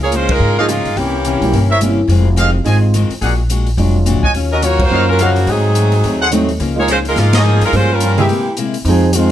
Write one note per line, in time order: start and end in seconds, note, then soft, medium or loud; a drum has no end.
0.00 0.38 C#2 medium
0.00 0.13 A#3 medium
0.00 0.13 F4 medium
0.00 0.13 G#4 medium
0.00 0.13 C#5 medium
0.11 0.30 C#3 medium
0.11 0.30 F3 medium
0.11 0.31 G#3 medium
0.11 0.31 A#3 medium
0.11 0.31 C#4 medium
0.11 0.31 D#4 medium
0.11 0.30 F4 medium
0.11 0.30 C5 medium
0.11 closed hi-hat soft
0.29 0.59 G#3 medium
0.29 0.58 D#4 medium
0.29 0.59 F4 medium
0.29 0.59 A#4 medium
0.29 kick medium
0.29 ride medium
0.40 0.82 G#2 medium
0.40 0.58 C#3 soft
0.40 0.59 F3 soft
0.40 0.59 A#3 soft
0.40 0.59 D#4 soft
0.57 0.69 F3 medium
0.57 0.68 G#3 medium
0.57 0.68 A#3 medium
0.57 0.67 A#3 medium
0.57 0.68 D#4 medium
0.57 0.69 D#4 medium
0.57 0.69 F4 medium
0.57 0.69 G#4 medium
0.57 0.65 A#4 medium
0.57 0.65 C#5 medium
0.57 0.65 D#5 medium
0.57 0.65 F5 medium
0.68 0.86 C#3 medium
0.68 0.87 F3 medium
0.68 0.97 G#3 medium
0.68 0.96 A#3 medium
0.68 0.87 A#3 medium
0.68 0.97 D#4 medium
0.68 0.87 D#4 medium
0.68 0.97 F4 medium
0.68 closed hi-hat medium
0.85 0.95 G2 medium
0.85 open hi-hat soft
0.96 1.38 C2 medium
0.96 1.14 C3 soft
0.96 1.15 E3 soft
0.96 1.82 E3 medium
0.96 1.82 A#3 medium
0.96 1.15 A#3 soft
0.96 1.82 C#4 medium
0.96 1.16 C#4 soft
0.96 1.82 G4 medium
0.96 open hi-hat soft
1.25 1.43 C3 medium
1.25 1.43 E3 medium
1.25 1.44 A#3 medium
1.25 1.44 C#4 medium
1.25 closed hi-hat soft
1.41 1.52 B1 medium
1.41 1.52 G3 medium
1.41 1.53 A#3 soft
1.41 1.53 C#4 soft
1.41 1.53 E4 medium
1.41 open hi-hat soft
1.52 2.06 G1 medium
1.52 1.71 C3 soft
1.52 1.71 E3 medium
1.52 1.72 A#3 medium
1.52 1.72 C#4 medium
1.52 open hi-hat soft
1.70 1.78 A#4 medium
1.70 1.78 C5 medium
1.70 1.78 C#5 medium
1.70 1.78 E5 medium
1.81 1.99 C3 medium
1.81 1.99 E3 medium
1.81 1.96 G3 soft
1.81 1.99 A#3 medium
1.81 1.97 A#3 soft
1.81 2.00 C#4 medium
1.81 1.97 C#4 soft
1.81 1.97 E4 medium
1.81 closed hi-hat medium
2.08 2.62 F1 medium
2.08 2.26 F2 medium
2.08 2.27 D#3 soft
2.08 2.28 G#3 medium
2.08 2.28 C4 medium
2.08 open hi-hat soft
2.36 2.55 F2 medium
2.36 2.55 D#3 medium
2.36 2.56 G#3 medium
2.36 2.56 C4 medium
2.36 2.49 G#4 medium
2.36 2.49 C5 medium
2.36 2.49 D#5 medium
2.36 2.49 F5 medium
2.36 closed hi-hat medium
2.64 3.07 G#1 medium
2.64 2.83 F2 medium
2.64 2.84 D#3 medium
2.64 3.07 G#3 soft
2.64 2.84 G#3 medium
2.64 3.07 C4 soft
2.64 2.85 C4 medium
2.64 3.07 D#4 soft
2.64 3.07 F4 medium
2.64 2.77 G#4 medium
2.64 2.77 C5 medium
2.64 2.77 D#5 medium
2.64 2.77 G#5 medium
2.64 open hi-hat soft
2.94 3.12 F2 medium
2.94 3.12 D#3 medium
2.94 3.13 G#3 medium
2.94 3.13 C4 medium
2.94 closed hi-hat soft
3.10 muted upright bass stroke soft
3.10 open hi-hat soft
3.21 3.75 A#1 medium
3.21 3.40 A#2 soft
3.21 3.40 G#3 soft
3.21 3.40 D4 medium
3.21 3.41 F#4 medium
3.21 3.33 G#4 medium
3.21 3.33 A#4 medium
3.21 3.33 D5 medium
3.21 3.33 F#5 medium
3.21 open hi-hat soft
3.49 3.68 A#2 medium
3.49 3.68 G#3 medium
3.49 3.68 D4 medium
3.49 3.69 F#4 medium
3.49 closed hi-hat medium
3.67 open hi-hat soft
3.77 4.13 F1 medium
3.77 3.96 A#2 medium
3.77 4.20 F#3 soft
3.77 3.96 G#3 soft
3.77 4.20 G#3 soft
3.77 3.96 D4 medium
3.77 4.20 D4 soft
3.77 4.20 F4 soft
3.77 3.97 F#4 medium
3.77 open hi-hat soft
4.06 4.24 A#2 medium
4.06 4.25 G#3 medium
4.06 4.25 D4 medium
4.06 4.25 F#4 medium
4.06 closed hi-hat soft
4.15 4.24 D2 medium
4.23 4.33 A#2 medium
4.23 4.31 F#4 medium
4.23 4.31 C#5 medium
4.23 4.31 D#5 medium
4.23 4.31 G#5 medium
4.23 kick soft
4.34 4.88 D#2 medium
4.34 4.52 D#3 soft
4.34 4.53 F#3 soft
4.34 4.53 C#4 soft
4.34 4.54 F4 medium
4.34 open hi-hat soft
4.52 4.63 C#4 medium
4.52 4.63 F#4 medium
4.52 4.62 A#4 medium
4.52 4.63 D#5 medium
4.62 4.80 D#3 medium
4.62 4.81 F#3 medium
4.62 4.80 A#3 medium
4.62 4.81 C#4 medium
4.62 4.81 F4 medium
4.62 4.80 F4 medium
4.62 4.80 F#4 medium
4.62 4.80 C#5 medium
4.62 closed hi-hat medium
4.79 5.09 A#3 medium
4.79 5.08 F4 medium
4.79 5.09 F#4 medium
4.79 5.08 C5 medium
4.79 kick medium
4.79 ride medium
4.89 5.44 F#2 medium
4.89 5.08 D#3 medium
4.89 5.32 F#3 soft
4.89 5.09 F#3 soft
4.89 5.32 A#3 soft
4.89 5.33 C#4 soft
4.89 5.09 C#4 soft
4.89 5.33 F4 medium
4.89 5.09 F4 medium
4.89 5.03 F#4 medium
4.89 5.03 C#5 medium
4.89 5.03 D#5 medium
4.89 5.03 F5 medium
5.09 5.19 F#3 medium
5.09 5.19 C#4 medium
5.09 5.19 F4 medium
5.09 5.19 A#4 medium
5.19 5.48 C#3 medium
5.19 5.37 D#3 medium
5.19 5.48 F3 medium
5.19 5.37 F#3 medium
5.19 5.48 A#3 medium
5.19 5.38 C#4 medium
5.19 5.38 F4 medium
5.19 5.31 F#4 medium
5.19 5.48 F#4 medium
5.19 5.31 C#5 medium
5.19 5.31 D#5 medium
5.19 5.31 F5 medium
5.19 closed hi-hat medium
5.36 open hi-hat soft
5.47 6.01 G#2 medium
5.47 5.65 G#2 soft
5.47 5.66 F#3 soft
5.47 6.33 F#3 medium
5.47 5.66 A3 soft
5.47 6.33 C4 medium
5.47 5.66 C4 soft
5.47 6.33 D#4 medium
5.47 6.33 G#4 medium
5.47 open hi-hat soft
5.75 5.93 G#2 medium
5.75 5.94 F#3 medium
5.75 5.94 A3 medium
5.75 5.94 C4 medium
5.75 closed hi-hat medium
5.92 open hi-hat soft
6.03 6.57 D#2 medium
6.03 6.22 G#2 soft
6.03 6.22 F#3 medium
6.03 6.22 A3 soft
6.03 6.23 C4 medium
6.03 open hi-hat soft
6.21 6.29 G#4 medium
6.21 6.28 A4 medium
6.21 6.28 C5 medium
6.21 6.29 F#5 medium
6.31 6.50 G#2 medium
6.31 6.46 F#3 soft
6.31 6.50 F#3 medium
6.31 6.47 A3 medium
6.31 6.50 A3 medium
6.31 6.47 C4 soft
6.31 6.51 C4 medium
6.31 6.47 D#4 medium
6.31 closed hi-hat medium
6.49 open hi-hat soft
6.60 7.13 C#2 medium
6.60 6.78 C#3 medium
6.60 6.79 F3 medium
6.60 6.79 A#3 medium
6.60 6.79 D#4 medium
6.60 open hi-hat soft
6.76 6.87 G#3 medium
6.76 6.87 A#3 medium
6.76 6.87 D#4 soft
6.76 6.87 F4 medium
6.76 6.89 F4 medium
6.76 6.89 G#4 medium
6.80 6.89 A#3 medium
6.80 6.89 C#5 medium
6.87 7.06 C#3 medium
6.87 7.06 F3 medium
6.87 6.98 G#3 medium
6.87 7.06 A#3 medium
6.87 7.07 D#4 medium
6.87 6.98 F4 medium
6.87 closed hi-hat medium
6.91 6.98 C#4 medium
6.91 6.98 C5 medium
7.05 7.17 G#3 medium
7.05 7.17 D#4 medium
7.05 7.17 F4 medium
7.05 7.17 A#4 medium
7.05 open hi-hat soft
7.16 7.58 G#2 medium
7.16 7.34 C#3 soft
7.16 7.35 F3 soft
7.16 7.35 G#3 medium
7.16 7.35 A#3 soft
7.16 7.35 A#3 medium
7.16 7.35 D#4 soft
7.16 7.35 D#4 medium
7.16 7.35 F4 medium
7.16 snare soft
7.16 open hi-hat soft
7.33 7.63 F3 medium
7.33 7.63 A#3 medium
7.33 7.63 D#4 medium
7.33 7.41 F4 medium
7.33 7.63 G#4 medium
7.33 7.41 A#4 medium
7.33 7.41 C#5 medium
7.33 7.41 D#5 medium
7.33 snare medium
7.33 ride medium
7.44 7.62 C#3 medium
7.44 7.63 F3 medium
7.44 7.63 A#3 medium
7.44 7.63 D#4 medium
7.61 7.72 F#2 medium
7.61 7.74 G#3 medium
7.61 7.74 D#4 medium
7.61 7.74 F4 medium
7.61 7.74 A#4 medium
7.61 open hi-hat soft
7.72 8.26 G2 medium
7.72 7.91 G2 soft
7.72 7.91 F3 soft
7.72 8.14 G3 soft
7.72 7.91 G#3 medium
7.72 8.14 A#3 soft
7.72 7.92 A#3 soft
7.72 8.14 C#4 soft
7.72 7.91 C#4 medium
7.72 7.92 C#4 soft
7.72 8.15 F4 medium
7.72 7.91 F4 medium
7.72 7.91 C5 medium
7.72 open hi-hat soft
7.92 8.19 G3 medium
7.92 8.19 C#4 medium
7.92 8.19 F4 medium
7.92 8.19 A#4 medium
8.00 8.19 G2 medium
8.00 8.20 F3 medium
8.00 8.20 A#3 medium
8.00 8.20 C#4 medium
8.00 closed hi-hat medium
8.17 8.28 C3 medium
8.17 8.56 E3 medium
8.17 8.28 G#3 medium
8.17 8.28 A#3 medium
8.17 8.56 A#3 medium
8.17 8.56 C4 medium
8.17 8.29 E4 soft
8.17 8.56 G4 medium
8.17 8.25 G#4 medium
8.17 8.29 G#4 medium
8.17 8.25 A#4 medium
8.17 8.25 C5 medium
8.17 8.25 E5 medium
8.17 open hi-hat soft
8.29 8.47 C3 soft
8.29 8.48 G#3 soft
8.29 8.48 A#3 soft
8.29 8.48 E4 medium
8.29 open hi-hat soft
8.57 8.75 C3 medium
8.57 8.76 G#3 medium
8.57 8.76 A#3 medium
8.57 8.76 E4 medium
8.57 closed hi-hat medium
8.74 open hi-hat soft
8.85 9.32 F2 medium
8.85 9.04 F2 soft
8.85 9.04 D#3 soft
8.85 9.12 F3 loud
8.85 9.04 G#3 medium
8.85 9.12 C4 loud
8.85 9.05 C4 soft
8.85 9.12 D#4 medium
8.85 9.12 G#4 loud
8.85 open hi-hat soft
9.13 9.32 F2 medium
9.13 9.32 D#3 medium
9.13 9.32 G#3 medium
9.13 9.32 C4 medium
9.13 9.32 D#4 medium
9.13 9.32 F4 loud
9.13 closed hi-hat medium